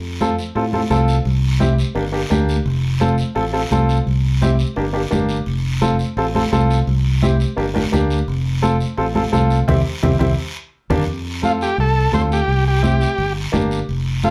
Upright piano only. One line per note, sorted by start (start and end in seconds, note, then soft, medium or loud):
0.21 0.33 C4 medium
0.21 0.33 F4 medium
0.21 0.33 A4 medium
0.55 0.62 C4 medium
0.55 0.62 F4 medium
0.55 0.62 A4 medium
0.73 0.79 C4 medium
0.73 0.79 F4 medium
0.73 0.80 A4 medium
0.90 1.15 C4 medium
0.90 1.15 F4 medium
0.90 1.15 A4 medium
1.59 1.73 C4 medium
1.59 1.73 E4 medium
1.59 1.73 G4 medium
1.95 2.02 A#3 medium
1.95 2.02 D4 medium
1.95 2.02 G4 medium
2.12 2.19 A#3 medium
2.12 2.19 D4 medium
2.12 2.20 G4 medium
2.30 2.55 A#3 medium
2.30 2.55 D4 medium
2.30 2.56 G4 medium
3.00 3.13 C4 medium
3.00 3.13 F4 medium
3.00 3.14 A4 medium
3.35 3.42 C4 medium
3.35 3.42 F4 medium
3.35 3.42 A4 medium
3.53 3.60 C4 medium
3.53 3.60 F4 medium
3.53 3.60 A4 medium
3.71 3.96 C4 medium
3.71 3.96 F4 medium
3.71 3.96 A4 medium
4.41 4.54 C4 medium
4.41 4.54 E4 medium
4.41 4.54 G4 medium
4.76 4.83 A#3 medium
4.76 4.83 D4 medium
4.76 4.83 G4 medium
4.93 5.00 A#3 medium
4.93 5.00 D4 medium
4.93 5.00 G4 medium
5.11 5.36 A#3 medium
5.11 5.36 D4 medium
5.11 5.36 G4 medium
5.81 5.94 C4 medium
5.81 5.94 F4 medium
5.81 5.94 A4 medium
6.17 6.23 C4 medium
6.17 6.24 F4 medium
6.17 6.24 A4 medium
6.35 6.41 C4 medium
6.35 6.41 F4 medium
6.35 6.41 A4 medium
6.52 6.77 C4 medium
6.52 6.77 F4 medium
6.52 6.77 A4 medium
7.22 7.35 C4 medium
7.22 7.35 E4 medium
7.22 7.35 G4 medium
7.57 7.63 A#3 medium
7.57 7.63 D4 medium
7.57 7.64 G4 medium
7.74 7.81 A#3 medium
7.74 7.81 D4 medium
7.74 7.81 G4 medium
7.92 8.17 A#3 medium
7.92 8.17 D4 medium
7.92 8.17 G4 medium
8.62 8.75 C4 medium
8.62 8.75 F4 medium
8.62 8.75 A4 medium
8.97 9.04 C4 medium
8.97 9.04 F4 medium
8.97 9.04 A4 medium
9.15 9.21 C4 medium
9.15 9.21 F4 medium
9.15 9.22 A4 medium
9.32 9.57 C4 medium
9.32 9.57 F4 medium
9.32 9.57 A4 medium
9.68 9.79 C4 medium
9.68 9.79 E4 medium
9.68 9.79 G4 medium
10.03 10.14 C4 medium
10.03 10.14 E4 medium
10.03 10.14 G4 medium
10.19 10.31 C4 medium
10.19 10.31 E4 medium
10.19 10.31 G4 medium
10.90 11.02 A#3 medium
10.90 11.01 D4 medium
10.90 11.01 G4 medium
11.42 11.67 C4 medium
11.42 11.67 F4 medium
11.42 11.68 A4 medium
12.13 12.38 C4 medium
12.13 12.38 F4 medium
12.13 12.38 A4 medium
12.82 13.07 C4 medium
12.82 13.07 E4 medium
12.82 13.08 G4 medium
13.52 13.77 A#3 medium
13.52 13.78 D4 medium
13.52 13.78 G4 medium
14.24 14.30 C4 medium
14.24 14.30 F4 medium
14.24 14.30 A4 medium